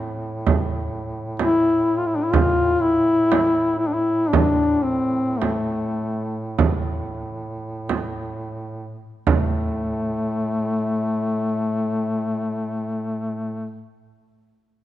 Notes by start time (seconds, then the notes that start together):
Already playing: A2
0.47 frame drum
1.39 E4, frame drum
1.98 F4
2.06 E4
2.16 D4
2.24 E4
2.32 F4, frame drum
2.81 E4
3.32 frame drum
3.78 E4
3.87 D4
3.94 E4
4.29 D4
4.33 frame drum
4.83 C4
5.38 A3, frame drum
6.59 frame drum
7.89 frame drum
9.27 A2 A3, frame drum